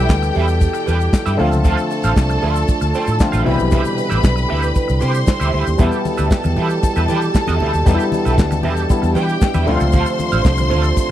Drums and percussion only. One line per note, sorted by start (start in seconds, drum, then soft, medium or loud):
0.09 kick loud
0.09 snare loud
0.09 clap loud
0.09 shaker medium
0.23 closed hi-hat soft
0.23 shaker medium
0.35 open hi-hat medium
0.48 closed hi-hat medium
0.48 shaker medium
0.60 kick loud
0.60 closed hi-hat medium
0.60 shaker medium
0.74 closed hi-hat medium
0.74 shaker medium
0.87 open hi-hat medium
0.87 shaker medium
1.00 closed hi-hat medium
1.00 shaker medium
1.13 kick loud
1.13 snare loud
1.13 clap loud
1.13 shaker medium
1.26 closed hi-hat soft
1.26 shaker medium
1.39 open hi-hat medium
1.52 closed hi-hat soft
1.52 shaker medium
1.65 kick loud
1.65 closed hi-hat medium
1.65 shaker medium
1.77 closed hi-hat soft
1.77 shaker medium
1.91 open hi-hat medium
1.91 shaker soft
2.03 closed hi-hat soft
2.03 shaker medium
2.16 kick loud
2.16 snare loud
2.16 clap loud
2.16 shaker medium
2.30 closed hi-hat soft
2.30 shaker medium
2.42 open hi-hat medium
2.55 closed hi-hat soft
2.55 shaker medium
2.68 kick loud
2.68 closed hi-hat medium
2.68 shaker medium
2.81 closed hi-hat medium
2.81 shaker medium
2.94 open hi-hat medium
2.94 shaker medium
3.07 closed hi-hat medium
3.07 shaker medium
3.20 kick loud
3.20 snare loud
3.20 clap loud
3.20 shaker medium
3.33 closed hi-hat soft
3.33 shaker medium
3.46 open hi-hat medium
3.59 closed hi-hat soft
3.59 shaker medium
3.71 kick loud
3.71 closed hi-hat medium
3.71 shaker medium
3.84 closed hi-hat soft
3.84 shaker medium
3.98 open hi-hat medium
3.98 shaker soft
4.11 closed hi-hat soft
4.11 shaker medium
4.24 kick loud
4.24 snare loud
4.24 clap loud
4.24 shaker medium
4.37 closed hi-hat soft
4.37 shaker medium
4.49 open hi-hat medium
4.62 closed hi-hat medium
4.62 shaker medium
4.75 kick loud
4.75 closed hi-hat medium
4.75 shaker medium
4.89 closed hi-hat medium
4.89 shaker medium
5.01 open hi-hat medium
5.01 shaker medium
5.14 closed hi-hat medium
5.14 shaker medium
5.27 kick loud
5.27 snare loud
5.27 clap medium
5.27 shaker medium
5.41 closed hi-hat soft
5.41 shaker medium
5.54 open hi-hat medium
5.67 closed hi-hat soft
5.67 shaker medium
5.79 kick loud
5.79 closed hi-hat medium
5.79 low conga medium
5.79 shaker medium
5.91 closed hi-hat soft
5.91 shaker medium
6.05 open hi-hat medium
6.05 muted conga soft
6.05 high conga medium
6.05 shaker medium
6.18 closed hi-hat soft
6.18 shaker medium
6.31 kick loud
6.31 snare loud
6.31 clap loud
6.31 shaker medium
6.44 closed hi-hat soft
6.44 high conga medium
6.44 shaker medium
6.57 open hi-hat medium
6.57 high conga medium
6.57 low conga medium
6.70 closed hi-hat soft
6.70 shaker medium
6.83 kick loud
6.83 closed hi-hat medium
6.83 muted conga soft
6.83 shaker medium
6.96 closed hi-hat medium
6.96 shaker medium
7.08 open hi-hat medium
7.08 muted conga soft
7.08 high conga medium
7.08 shaker medium
7.21 closed hi-hat soft
7.21 shaker medium
7.35 kick loud
7.35 snare loud
7.35 clap loud
7.35 shaker medium
7.47 closed hi-hat soft
7.47 high conga medium
7.47 shaker medium
7.60 open hi-hat medium
7.60 muted conga soft
7.60 low conga medium
7.74 closed hi-hat soft
7.74 shaker medium
7.86 kick loud
7.86 closed hi-hat medium
7.86 muted conga soft
7.86 low conga medium
7.86 shaker medium
7.99 closed hi-hat soft
7.99 shaker medium
8.12 open hi-hat medium
8.12 muted conga soft
8.12 high conga medium
8.12 shaker medium
8.25 closed hi-hat soft
8.25 shaker medium
8.38 kick loud
8.38 snare loud
8.38 clap loud
8.38 shaker medium
8.51 closed hi-hat soft
8.51 high conga medium
8.51 shaker medium
8.63 open hi-hat medium
8.63 high conga medium
8.63 low conga medium
8.77 closed hi-hat medium
8.77 shaker medium
8.89 kick loud
8.89 closed hi-hat medium
8.89 muted conga soft
8.89 shaker medium
9.03 closed hi-hat soft
9.03 shaker soft
9.15 open hi-hat medium
9.15 muted conga soft
9.15 high conga medium
9.15 shaker medium
9.29 closed hi-hat medium
9.29 shaker medium
9.41 kick loud
9.41 snare loud
9.41 clap loud
9.41 muted conga soft
9.41 shaker loud
9.54 closed hi-hat soft
9.54 high conga medium
9.54 shaker medium
9.68 open hi-hat medium
9.68 muted conga soft
9.68 low conga medium
9.80 closed hi-hat soft
9.80 shaker medium
9.92 kick loud
9.92 closed hi-hat medium
9.92 muted conga soft
9.92 low conga medium
9.92 shaker medium
10.06 closed hi-hat soft
10.06 shaker medium
10.19 open hi-hat medium
10.19 high conga medium
10.19 shaker medium
10.32 closed hi-hat soft
10.32 shaker medium
10.45 kick loud
10.45 snare loud
10.45 clap loud
10.45 muted conga soft
10.45 shaker medium
10.57 closed hi-hat soft
10.57 high conga medium
10.57 shaker medium
10.71 open hi-hat medium
10.71 muted conga soft
10.71 high conga medium
10.71 low conga medium
10.83 closed hi-hat soft
10.83 shaker medium
10.96 kick loud
10.96 closed hi-hat medium
10.96 shaker medium